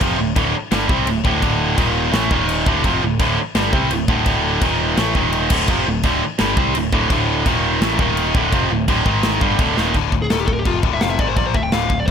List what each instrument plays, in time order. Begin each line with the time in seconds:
0.00 picked electric bass F1, distorted electric guitar F2 C3 F3, kick, crash
0.18 picked electric bass D1, distorted electric guitar D2 A2
0.36 picked electric bass D1, distorted electric guitar D2 A2 D3, kick, crash
0.71 picked electric bass G1, distorted electric guitar G2 D3 G3, snare, crash
0.89 picked electric bass C2, distorted electric guitar C3 G3 C4, kick
1.07 picked electric bass D1, distorted electric guitar D2 A2, crash
1.24 picked electric bass D1, distorted electric guitar D2 A2 D3, kick
1.41 picked electric bass D1, distorted electric guitar D2 A2 D3, kick, crash
1.76 picked electric bass D#1, distorted electric guitar D#2 A#2 D#3, kick, crash
2.12 picked electric bass A1, distorted electric guitar A2 E3 A3, snare, crash
2.31 picked electric bass D#1, distorted electric guitar D#2 A#2 D#3, kick
2.49 crash
2.66 picked electric bass D1, distorted electric guitar D2 A2 D3, kick
2.84 picked electric bass F1, distorted electric guitar F2 C3 F3, kick, crash
3.02 picked electric bass D1, distorted electric guitar D2 A2
3.19 picked electric bass D1, distorted electric guitar D2 A2 D3, kick, crash
3.55 picked electric bass G1, distorted electric guitar G2 D3 G3, snare, crash
3.72 picked electric bass C2, distorted electric guitar C3 G3 C4, kick
3.91 picked electric bass D1, distorted electric guitar D2 A2, crash
4.08 picked electric bass D1, distorted electric guitar D2 A2 D3, kick
4.25 picked electric bass D1, distorted electric guitar D2 A2 D3, kick, crash
4.61 picked electric bass D#1, distorted electric guitar D#2 A#2 D#3, kick, crash
4.97 picked electric bass A1, distorted electric guitar A2 E3 A3, snare, crash
5.14 picked electric bass D#1, distorted electric guitar D#2 A#2 D#3, kick
5.33 crash
5.50 picked electric bass D1, distorted electric guitar D2 A2 D3, kick, crash
5.68 picked electric bass F1, distorted electric guitar F2 C3 F3, kick, crash
5.86 picked electric bass D1, distorted electric guitar D2 A2
6.03 picked electric bass D1, distorted electric guitar D2 A2 D3, kick, crash
6.39 picked electric bass G1, distorted electric guitar G2 D3 G3, snare, crash
6.57 picked electric bass C2, distorted electric guitar C3 G3 C4, kick
6.75 picked electric bass D1, distorted electric guitar D2 A2, crash
6.93 picked electric bass D1, distorted electric guitar D2 A2 D3, kick
7.10 picked electric bass D1, distorted electric guitar D2 A2 D3, kick, crash
7.46 picked electric bass D#1, distorted electric guitar D#2 A#2 D#3, kick, crash
7.81 picked electric bass A1, distorted electric guitar A2 E3 A3, snare, crash
7.99 picked electric bass D#1, distorted electric guitar D#2 A#2 D#3, kick
8.17 crash
8.35 picked electric bass D1, distorted electric guitar D2 A2 D3, kick
8.52 picked electric bass F1, distorted electric guitar F2 C3 F3, kick, crash
8.70 picked electric bass D1, distorted electric guitar D2 A2
8.88 picked electric bass D1, distorted electric guitar D2 A2 D3, kick, crash
9.06 picked electric bass G#1, distorted electric guitar G#2 D#3 G#3, kick
9.23 snare, crash
9.41 picked electric bass G1, distorted electric guitar G2 D3 G3, kick
9.59 picked electric bass D1, distorted electric guitar D2 A2 D3, kick, crash
9.77 picked electric bass D#1, distorted electric guitar D#2 A#2 D#3, snare
9.94 picked electric bass D1, distorted electric guitar D2 A2 D3, kick, china
10.12 picked electric bass D1, distorted electric guitar D2 A2, kick
10.22 lead electric guitar G#4
10.30 picked electric bass D#1, distorted electric guitar D#2 A#2 D#3, lead electric guitar A4, snare, china
10.40 lead electric guitar G4
10.47 picked electric bass D1, distorted electric guitar D2 A2, lead electric guitar A4, kick
10.53 lead electric guitar A#4
10.60 lead electric guitar G4
10.65 picked electric bass F1, distorted electric guitar F2 C3 F3, lead electric guitar F4, kick, china
10.83 picked electric bass D1, distorted electric guitar D2 A2 D3, kick
10.94 lead electric guitar E5
11.01 picked electric bass F1, distorted electric guitar F2 C3 F3, lead electric guitar F5, snare, china
11.10 lead electric guitar E5
11.19 picked electric bass G#1, distorted electric guitar G#2 D#3 G#3, lead electric guitar D5, kick
11.29 lead electric guitar C5
11.36 picked electric bass A#1, distorted electric guitar A#2 F3 A#3, lead electric guitar D5, kick, china
11.47 lead electric guitar C5
11.54 picked electric bass D1, distorted electric guitar D2 A2, lead electric guitar E5, kick
11.63 lead electric guitar G5
11.72 picked electric bass D1, distorted electric guitar D2 A2 D3, lead electric guitar F5, snare, china
11.90 picked electric bass D1, distorted electric guitar D2 A2, kick
12.00 lead electric guitar D5
12.06 picked electric bass A1, distorted electric guitar A2, lead electric guitar C5, kick